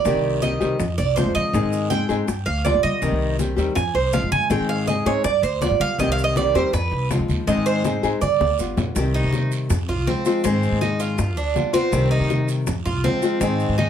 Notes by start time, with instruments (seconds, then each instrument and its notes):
Already playing: cuban tres D5
0.05 upright bass C2, nylon-string guitar C3 D#3 G3 C4 G4, high bongo, long guiro, maracas
0.14 upright bass C2
0.24 high conga
0.42 nylon-string guitar D#3 G3 C4 G4, cuban tres D#5, high bongo, high conga, short guiro, maracas
0.60 upright bass C2, nylon-string guitar D#3 G3 C4 G4, high conga, short guiro, maracas
0.79 upright bass F2, muted nylon-string guitar stroke, high bongo, high conga, low conga, long guiro, maracas
0.98 upright bass C2, cuban tres D5, high bongo, high conga, low conga, maracas
1.16 nylon-string guitar F3 G#3 C4 F4, cuban tres C5, high bongo, low bongo, high conga, short guiro, maracas
1.26 upright bass F2
1.35 upright bass F3, cuban tres D#5, high bongo, high conga, short guiro, maracas
1.53 upright bass G#2, nylon-string guitar D#3 G#3 C4 D#4 G#4, high bongo, high conga, long guiro, maracas
1.63 upright bass G#2
1.73 high bongo, high conga, maracas
1.90 nylon-string guitar G#3 C4 D#4 G#4, cuban tres G5, high bongo, high conga, short guiro, maracas
2.09 upright bass G#2, nylon-string guitar G#3 C4 D#4 G#4, short guiro, maracas
2.27 upright bass G2, muted nylon-string guitar stroke, high bongo, high conga, long guiro, maracas
2.46 upright bass D2, cuban tres F5, high bongo, high conga
2.64 nylon-string guitar G3 B3 F4, cuban tres D5, high bongo, low bongo, high conga, short guiro, maracas
2.74 upright bass G2
2.83 upright bass G3, cuban tres D#5, high conga, short guiro, maracas
3.02 upright bass C2, nylon-string guitar C3 D#3 G3 C4 G4, high bongo, high conga, long guiro, maracas
3.11 upright bass C2
3.20 high conga
3.39 nylon-string guitar D#3 G3 C4 G4, high bongo, high conga, short guiro, maracas
3.56 upright bass D#2, nylon-string guitar D#3 G3 C4 G4, high bongo, short guiro, maracas
3.75 upright bass F2, cuban tres G#5, muted nylon-string guitar stroke, high bongo, high conga, low conga, long guiro, maracas
3.94 upright bass C2, cuban tres C5, high bongo
4.12 nylon-string guitar F3 G#3 C4 F4, cuban tres F5, high bongo, low bongo, high conga, short guiro, maracas
4.22 upright bass F2
4.31 upright bass G2, cuban tres G#5, high bongo, high conga, short guiro, maracas
4.50 upright bass G#2, nylon-string guitar D#3 G#3 C4 D#4 G#4, cuban tres G5, high bongo, high conga, long guiro, maracas
4.59 upright bass G#2
4.69 cuban tres F5, high bongo, high conga
4.87 nylon-string guitar G#3 C4 D#4 G#4, cuban tres D#5, high bongo, high conga, short guiro, maracas
5.06 upright bass G#2, nylon-string guitar G#3 C4 D#4 G#4, cuban tres C#5, high bongo, short guiro, maracas
5.24 upright bass G2, cuban tres D5, muted nylon-string guitar stroke, high bongo, high conga, long guiro, maracas
5.42 upright bass D2, cuban tres C5, high bongo, high conga, maracas
5.61 nylon-string guitar G3 B3 F4, cuban tres D5, high bongo, low bongo, high conga, short guiro, maracas
5.70 upright bass G2
5.80 upright bass G3, cuban tres F5, high conga, short guiro, maracas
5.98 upright bass C2, nylon-string guitar C3 D#3 G3 C4 G4, cuban tres D#5, high bongo, high conga, long guiro, maracas
6.08 upright bass C2
6.12 cuban tres F5
6.18 high conga, maracas
6.24 cuban tres D#5
6.36 nylon-string guitar D#3 G3 C4 G4, cuban tres D5, high bongo, high conga, short guiro, maracas
6.54 upright bass E2, nylon-string guitar D#3 G3 C4 G4, cuban tres C5, high conga, short guiro, maracas
6.73 upright bass F2, cuban tres B4, muted nylon-string guitar stroke, high bongo, high conga, low conga, long guiro, maracas
6.91 upright bass C2, high bongo, high conga
7.10 nylon-string guitar F3 G#3 C4 F4, high bongo, low bongo, high conga, short guiro, maracas
7.19 upright bass F2
7.28 upright bass D#2, high bongo, high conga, short guiro, maracas
7.47 upright bass G#2, nylon-string guitar D#3 G#3 C4 D#4 G#4, cuban tres D#5, high bongo, high conga, long guiro, maracas
7.57 upright bass G#2
7.66 cuban tres C5, high bongo, high conga, maracas
7.84 nylon-string guitar G#3 C4 D#4 G#4, high bongo, high conga, short guiro, maracas
8.03 upright bass G#2, nylon-string guitar G#3 C4 D#4 G#4, high conga, short guiro, maracas
8.21 upright bass G2, cuban tres D5, muted nylon-string guitar stroke, high conga, long guiro, maracas
8.40 upright bass D2, low bongo, high conga
8.59 upright bass G1, nylon-string guitar G3 B3 F4, short guiro, maracas
8.77 upright bass B1, low bongo, low conga, short guiro, maracas
8.95 upright bass C2, nylon-string guitar C3 D#3 G3 C4 G4, high bongo, long guiro, maracas
9.14 cuban tres D#4, high conga, maracas
9.24 upright bass C3
9.32 high bongo, high conga, short guiro, maracas
9.51 high bongo, high conga, short guiro, maracas
9.70 upright bass F2, muted nylon-string guitar stroke, high bongo, high conga, low conga, long guiro, maracas
9.88 upright bass C2, cuban tres F4, high bongo, high conga, low conga, maracas
10.07 nylon-string guitar F3 G#3 C4 F4, cuban tres C4, high bongo, low bongo, high conga, short guiro, maracas
10.25 nylon-string guitar F3 G#3 C4 F4, high bongo, high conga, short guiro, maracas
10.43 upright bass G#2, nylon-string guitar D#3 G#3 C4 D#4 G#4, cuban tres C4, high bongo, high conga, long guiro, maracas
10.63 high conga, maracas
10.72 upright bass G#2
10.81 cuban tres D#4, high bongo, high conga, short guiro, maracas
11.00 cuban tres F4, high bongo, high conga, short guiro, maracas
11.18 upright bass G2, muted nylon-string guitar stroke, high bongo, long guiro, maracas
11.37 upright bass D2, cuban tres D4, high bongo, high conga, maracas
11.54 nylon-string guitar G3 B3 F4, high bongo, low bongo, high conga, short guiro, maracas
11.73 nylon-string guitar B3 F4, cuban tres C4, high conga, short guiro, maracas
11.91 upright bass C2, nylon-string guitar C3 D#3 G3 C4 G4, high bongo, high conga, long guiro, maracas
12.11 cuban tres D#4, maracas
12.20 upright bass C3
12.30 high bongo, high conga, short guiro, maracas
12.48 high bongo, high conga, short guiro, maracas
12.67 upright bass F2, muted nylon-string guitar stroke, high bongo, high conga, low conga, long guiro, maracas
12.85 upright bass C2, cuban tres F4, high bongo, high conga, low conga, maracas
13.04 nylon-string guitar F3 G#3 C4 F4, cuban tres C4, high bongo, low bongo, high conga, short guiro, maracas
13.22 nylon-string guitar F3 G#3 C4 F4, high bongo, high conga, short guiro, maracas
13.40 upright bass G#2, nylon-string guitar D#3 G#3 C4 D#4 G#4, cuban tres C4, high bongo, long guiro, maracas
13.60 high conga, maracas
13.68 upright bass G#2
13.78 cuban tres D#4, high bongo, high conga, short guiro, maracas